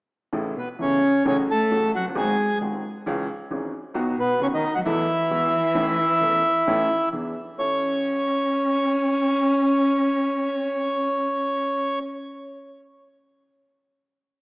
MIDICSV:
0, 0, Header, 1, 4, 480
1, 0, Start_track
1, 0, Key_signature, 3, "major"
1, 0, Tempo, 452148
1, 355, Time_signature, 4, 2, 24, 8
1, 6591, Tempo, 457666
1, 15194, End_track
2, 0, Start_track
2, 0, Title_t, "Bandoneon"
2, 0, Program_c, 0, 23
2, 625, Note_on_c, 0, 71, 61
2, 629, Note_on_c, 0, 59, 49
2, 728, Note_off_c, 0, 71, 0
2, 732, Note_off_c, 0, 59, 0
2, 866, Note_on_c, 0, 73, 73
2, 868, Note_on_c, 0, 61, 57
2, 1308, Note_off_c, 0, 61, 0
2, 1339, Note_off_c, 0, 73, 0
2, 1346, Note_on_c, 0, 61, 61
2, 1355, Note_on_c, 0, 73, 73
2, 1451, Note_off_c, 0, 61, 0
2, 1458, Note_off_c, 0, 73, 0
2, 1596, Note_on_c, 0, 69, 68
2, 1605, Note_on_c, 0, 81, 87
2, 2031, Note_off_c, 0, 69, 0
2, 2035, Note_off_c, 0, 81, 0
2, 2072, Note_on_c, 0, 66, 60
2, 2084, Note_on_c, 0, 78, 78
2, 2175, Note_off_c, 0, 66, 0
2, 2185, Note_off_c, 0, 78, 0
2, 2304, Note_on_c, 0, 68, 62
2, 2304, Note_on_c, 0, 80, 78
2, 2743, Note_off_c, 0, 68, 0
2, 2743, Note_off_c, 0, 80, 0
2, 4459, Note_on_c, 0, 71, 76
2, 4465, Note_on_c, 0, 59, 55
2, 4673, Note_off_c, 0, 59, 0
2, 4692, Note_off_c, 0, 71, 0
2, 4697, Note_on_c, 0, 73, 77
2, 4704, Note_on_c, 0, 61, 64
2, 4746, Note_off_c, 0, 73, 0
2, 4751, Note_off_c, 0, 61, 0
2, 4823, Note_on_c, 0, 75, 82
2, 4831, Note_on_c, 0, 63, 66
2, 5031, Note_off_c, 0, 75, 0
2, 5035, Note_off_c, 0, 63, 0
2, 5041, Note_on_c, 0, 78, 86
2, 5053, Note_on_c, 0, 66, 71
2, 5093, Note_off_c, 0, 78, 0
2, 5102, Note_off_c, 0, 66, 0
2, 5153, Note_on_c, 0, 76, 84
2, 5159, Note_on_c, 0, 64, 70
2, 7513, Note_off_c, 0, 76, 0
2, 7516, Note_off_c, 0, 64, 0
2, 8040, Note_on_c, 0, 73, 83
2, 12656, Note_off_c, 0, 73, 0
2, 15194, End_track
3, 0, Start_track
3, 0, Title_t, "Upright piano"
3, 0, Program_c, 1, 0
3, 346, Note_on_c, 1, 45, 67
3, 346, Note_on_c, 1, 49, 59
3, 346, Note_on_c, 1, 57, 51
3, 347, Note_on_c, 1, 52, 50
3, 347, Note_on_c, 1, 64, 58
3, 348, Note_on_c, 1, 33, 64
3, 554, Note_off_c, 1, 45, 0
3, 554, Note_off_c, 1, 49, 0
3, 554, Note_off_c, 1, 57, 0
3, 555, Note_off_c, 1, 33, 0
3, 555, Note_off_c, 1, 52, 0
3, 555, Note_off_c, 1, 64, 0
3, 838, Note_on_c, 1, 52, 36
3, 839, Note_on_c, 1, 64, 45
3, 841, Note_on_c, 1, 49, 40
3, 842, Note_on_c, 1, 28, 45
3, 842, Note_on_c, 1, 40, 45
3, 844, Note_on_c, 1, 57, 37
3, 1044, Note_off_c, 1, 52, 0
3, 1045, Note_off_c, 1, 64, 0
3, 1046, Note_off_c, 1, 28, 0
3, 1046, Note_off_c, 1, 40, 0
3, 1046, Note_off_c, 1, 49, 0
3, 1047, Note_off_c, 1, 57, 0
3, 1327, Note_on_c, 1, 54, 55
3, 1331, Note_on_c, 1, 49, 61
3, 1333, Note_on_c, 1, 33, 71
3, 1333, Note_on_c, 1, 57, 59
3, 1334, Note_on_c, 1, 45, 75
3, 1339, Note_on_c, 1, 66, 65
3, 1531, Note_off_c, 1, 54, 0
3, 1533, Note_off_c, 1, 49, 0
3, 1534, Note_off_c, 1, 33, 0
3, 1535, Note_off_c, 1, 45, 0
3, 1535, Note_off_c, 1, 57, 0
3, 1538, Note_off_c, 1, 66, 0
3, 1817, Note_on_c, 1, 45, 50
3, 1819, Note_on_c, 1, 33, 48
3, 1819, Note_on_c, 1, 49, 42
3, 1819, Note_on_c, 1, 54, 39
3, 1819, Note_on_c, 1, 66, 47
3, 1824, Note_on_c, 1, 57, 36
3, 2015, Note_off_c, 1, 45, 0
3, 2016, Note_off_c, 1, 33, 0
3, 2016, Note_off_c, 1, 49, 0
3, 2016, Note_off_c, 1, 54, 0
3, 2016, Note_off_c, 1, 66, 0
3, 2019, Note_off_c, 1, 57, 0
3, 2114, Note_on_c, 1, 29, 44
3, 2172, Note_off_c, 1, 29, 0
3, 2180, Note_on_c, 1, 30, 51
3, 2227, Note_on_c, 1, 31, 64
3, 2235, Note_off_c, 1, 30, 0
3, 2284, Note_on_c, 1, 51, 58
3, 2287, Note_on_c, 1, 32, 69
3, 2289, Note_off_c, 1, 31, 0
3, 2289, Note_on_c, 1, 60, 54
3, 2289, Note_on_c, 1, 66, 69
3, 2291, Note_on_c, 1, 44, 70
3, 2293, Note_on_c, 1, 56, 54
3, 2489, Note_off_c, 1, 51, 0
3, 2490, Note_off_c, 1, 32, 0
3, 2491, Note_off_c, 1, 60, 0
3, 2491, Note_off_c, 1, 66, 0
3, 2492, Note_off_c, 1, 44, 0
3, 2493, Note_off_c, 1, 56, 0
3, 2772, Note_on_c, 1, 39, 46
3, 2774, Note_on_c, 1, 51, 40
3, 2774, Note_on_c, 1, 56, 39
3, 2775, Note_on_c, 1, 27, 48
3, 2778, Note_on_c, 1, 60, 37
3, 2782, Note_on_c, 1, 66, 43
3, 2971, Note_off_c, 1, 39, 0
3, 2972, Note_off_c, 1, 51, 0
3, 2972, Note_off_c, 1, 56, 0
3, 2973, Note_off_c, 1, 27, 0
3, 2974, Note_off_c, 1, 60, 0
3, 2976, Note_off_c, 1, 66, 0
3, 3250, Note_on_c, 1, 52, 66
3, 3252, Note_on_c, 1, 49, 75
3, 3254, Note_on_c, 1, 56, 59
3, 3255, Note_on_c, 1, 61, 61
3, 3258, Note_on_c, 1, 37, 83
3, 3259, Note_on_c, 1, 68, 74
3, 3449, Note_off_c, 1, 52, 0
3, 3450, Note_off_c, 1, 49, 0
3, 3451, Note_off_c, 1, 56, 0
3, 3452, Note_off_c, 1, 61, 0
3, 3453, Note_off_c, 1, 37, 0
3, 3453, Note_off_c, 1, 68, 0
3, 3719, Note_on_c, 1, 52, 43
3, 3723, Note_on_c, 1, 61, 39
3, 3724, Note_on_c, 1, 44, 50
3, 3729, Note_on_c, 1, 32, 53
3, 3730, Note_on_c, 1, 56, 39
3, 3733, Note_on_c, 1, 68, 49
3, 3920, Note_off_c, 1, 52, 0
3, 3922, Note_off_c, 1, 44, 0
3, 3922, Note_off_c, 1, 61, 0
3, 3925, Note_off_c, 1, 32, 0
3, 3925, Note_off_c, 1, 56, 0
3, 3927, Note_off_c, 1, 68, 0
3, 4184, Note_on_c, 1, 54, 52
3, 4186, Note_on_c, 1, 51, 63
3, 4189, Note_on_c, 1, 35, 74
3, 4190, Note_on_c, 1, 59, 60
3, 4195, Note_on_c, 1, 47, 68
3, 4196, Note_on_c, 1, 66, 71
3, 4390, Note_off_c, 1, 54, 0
3, 4391, Note_off_c, 1, 51, 0
3, 4393, Note_off_c, 1, 35, 0
3, 4393, Note_off_c, 1, 59, 0
3, 4395, Note_off_c, 1, 47, 0
3, 4396, Note_off_c, 1, 66, 0
3, 4677, Note_on_c, 1, 51, 42
3, 4678, Note_on_c, 1, 54, 38
3, 4682, Note_on_c, 1, 59, 40
3, 4683, Note_on_c, 1, 30, 48
3, 4684, Note_on_c, 1, 42, 47
3, 4684, Note_on_c, 1, 66, 46
3, 4876, Note_off_c, 1, 51, 0
3, 4876, Note_off_c, 1, 54, 0
3, 4878, Note_off_c, 1, 59, 0
3, 4879, Note_off_c, 1, 30, 0
3, 4879, Note_off_c, 1, 42, 0
3, 4880, Note_off_c, 1, 66, 0
3, 5155, Note_on_c, 1, 40, 81
3, 5157, Note_on_c, 1, 52, 81
3, 5160, Note_on_c, 1, 57, 59
3, 5161, Note_on_c, 1, 59, 56
3, 5161, Note_on_c, 1, 69, 72
3, 5353, Note_off_c, 1, 40, 0
3, 5355, Note_off_c, 1, 52, 0
3, 5355, Note_off_c, 1, 57, 0
3, 5356, Note_off_c, 1, 59, 0
3, 5356, Note_off_c, 1, 69, 0
3, 5629, Note_on_c, 1, 52, 49
3, 5631, Note_on_c, 1, 40, 51
3, 5633, Note_on_c, 1, 56, 39
3, 5634, Note_on_c, 1, 59, 37
3, 5639, Note_on_c, 1, 66, 44
3, 5831, Note_off_c, 1, 40, 0
3, 5831, Note_off_c, 1, 52, 0
3, 5832, Note_off_c, 1, 56, 0
3, 5833, Note_off_c, 1, 59, 0
3, 5835, Note_off_c, 1, 66, 0
3, 6100, Note_on_c, 1, 52, 61
3, 6102, Note_on_c, 1, 45, 69
3, 6104, Note_on_c, 1, 57, 53
3, 6109, Note_on_c, 1, 33, 67
3, 6109, Note_on_c, 1, 69, 61
3, 6110, Note_on_c, 1, 61, 56
3, 6306, Note_off_c, 1, 52, 0
3, 6308, Note_off_c, 1, 45, 0
3, 6308, Note_off_c, 1, 57, 0
3, 6311, Note_off_c, 1, 33, 0
3, 6311, Note_off_c, 1, 69, 0
3, 6312, Note_off_c, 1, 61, 0
3, 6588, Note_on_c, 1, 57, 37
3, 6589, Note_on_c, 1, 52, 40
3, 6590, Note_on_c, 1, 40, 47
3, 6592, Note_on_c, 1, 61, 35
3, 6593, Note_on_c, 1, 28, 46
3, 6594, Note_on_c, 1, 69, 44
3, 6790, Note_off_c, 1, 57, 0
3, 6791, Note_off_c, 1, 40, 0
3, 6791, Note_off_c, 1, 52, 0
3, 6792, Note_off_c, 1, 61, 0
3, 6793, Note_off_c, 1, 28, 0
3, 6793, Note_off_c, 1, 69, 0
3, 7076, Note_on_c, 1, 52, 65
3, 7081, Note_on_c, 1, 45, 77
3, 7081, Note_on_c, 1, 61, 58
3, 7082, Note_on_c, 1, 33, 73
3, 7083, Note_on_c, 1, 57, 58
3, 7085, Note_on_c, 1, 69, 69
3, 7275, Note_off_c, 1, 52, 0
3, 7277, Note_off_c, 1, 61, 0
3, 7278, Note_off_c, 1, 33, 0
3, 7278, Note_off_c, 1, 45, 0
3, 7278, Note_off_c, 1, 57, 0
3, 7280, Note_off_c, 1, 69, 0
3, 7552, Note_on_c, 1, 52, 49
3, 7556, Note_on_c, 1, 40, 51
3, 7557, Note_on_c, 1, 59, 36
3, 7562, Note_on_c, 1, 62, 38
3, 7563, Note_on_c, 1, 68, 43
3, 7760, Note_off_c, 1, 40, 0
3, 7760, Note_off_c, 1, 59, 0
3, 7761, Note_off_c, 1, 52, 0
3, 7763, Note_off_c, 1, 62, 0
3, 7763, Note_off_c, 1, 68, 0
3, 8037, Note_on_c, 1, 33, 43
3, 8040, Note_on_c, 1, 61, 37
3, 8041, Note_on_c, 1, 69, 46
3, 8044, Note_on_c, 1, 64, 37
3, 13113, Note_off_c, 1, 33, 0
3, 13116, Note_off_c, 1, 61, 0
3, 13117, Note_off_c, 1, 69, 0
3, 13120, Note_off_c, 1, 64, 0
3, 15194, End_track
4, 0, Start_track
4, 0, Title_t, "Cello"
4, 0, Program_c, 2, 42
4, 602, Note_on_c, 2, 47, 54
4, 710, Note_off_c, 2, 47, 0
4, 846, Note_on_c, 2, 49, 61
4, 1297, Note_off_c, 2, 49, 0
4, 1347, Note_on_c, 2, 49, 67
4, 1452, Note_off_c, 2, 49, 0
4, 1585, Note_on_c, 2, 57, 76
4, 2025, Note_off_c, 2, 57, 0
4, 2063, Note_on_c, 2, 54, 72
4, 2168, Note_off_c, 2, 54, 0
4, 2307, Note_on_c, 2, 56, 69
4, 2745, Note_off_c, 2, 56, 0
4, 4431, Note_on_c, 2, 47, 70
4, 4655, Note_off_c, 2, 47, 0
4, 4675, Note_on_c, 2, 49, 63
4, 4729, Note_off_c, 2, 49, 0
4, 4810, Note_on_c, 2, 51, 69
4, 5024, Note_off_c, 2, 51, 0
4, 5040, Note_on_c, 2, 54, 71
4, 5091, Note_off_c, 2, 54, 0
4, 5149, Note_on_c, 2, 52, 73
4, 7511, Note_off_c, 2, 52, 0
4, 8039, Note_on_c, 2, 61, 69
4, 12656, Note_off_c, 2, 61, 0
4, 15194, End_track
0, 0, End_of_file